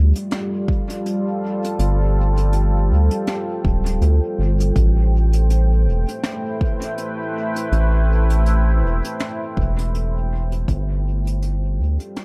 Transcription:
Already playing: analog synth bass D2, ambient pad G3 F4 A4
0.16 closed hi-hat
0.31 snare, closed hi-hat
0.39 ambient pad C5
0.68 kick
0.90 closed hi-hat
1.03 ambient pad G5, closed hi-hat
1.64 closed hi-hat
1.79 analog synth bass G1, closed hi-hat
2.37 closed hi-hat
2.53 closed hi-hat
2.91 analog synth bass D2
3.11 closed hi-hat
3.27 snare, closed hi-hat
3.65 analog synth bass D1, kick
3.86 closed hi-hat
4.01 analog synth bass D2, closed hi-hat
4.39 analog synth bass G1
4.60 closed hi-hat
4.76 analog synth bass A1, ambient pad A3, kick, closed hi-hat
5.17 ambient pad E4
5.33 closed hi-hat
5.40 ambient pad B4
5.50 closed hi-hat
5.87 analog synth bass E1
6.08 closed hi-hat
6.23 snare, closed hi-hat
6.61 kick
6.82 closed hi-hat
6.98 closed hi-hat
7.56 closed hi-hat
7.72 analog synth bass A1, closed hi-hat
8.30 closed hi-hat
8.46 closed hi-hat
8.83 analog synth bass E1
9.05 closed hi-hat
9.19 snare, closed hi-hat
9.57 analog synth bass E1, kick
9.78 closed hi-hat
9.95 closed hi-hat
10.52 closed hi-hat
10.68 analog synth bass G1, ambient pad G3, kick, closed hi-hat
10.91 ambient pad F4
11.27 closed hi-hat
11.35 ambient pad A4
11.42 closed hi-hat
11.79 analog synth bass D2
12.00 closed hi-hat
12.16 snare, closed hi-hat

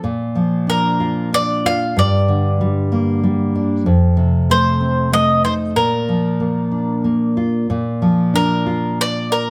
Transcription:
0.04 nylon-string guitar A#2
0.35 nylon-string guitar F3
0.67 nylon-string guitar D4, mandolin A#4
1.00 nylon-string guitar F4
1.33 nylon-string guitar D4, mandolin D5
1.66 nylon-string guitar F4, mandolin F5
1.97 nylon-string guitar G2, mandolin D5
2.28 nylon-string guitar D3
2.61 nylon-string guitar G3
2.92 nylon-string guitar A#3
3.24 nylon-string guitar G3
3.55 nylon-string guitar D4
3.86 nylon-string guitar F2
4.17 nylon-string guitar C3
4.50 nylon-string guitar A3, mandolin C5
4.81 nylon-string guitar C4
5.12 nylon-string guitar A3, mandolin D#5
5.44 nylon-string guitar D#4, mandolin C5
5.76 nylon-string guitar A#2, mandolin A#4
6.09 nylon-string guitar F3
6.40 nylon-string guitar A#3
6.71 nylon-string guitar D4
7.04 nylon-string guitar A#3
7.37 nylon-string guitar F4
7.70 nylon-string guitar A#2
8.02 nylon-string guitar F3
8.34 nylon-string guitar D4, mandolin A#4
8.66 nylon-string guitar F4
9.01 mandolin D5
9.32 mandolin A#4

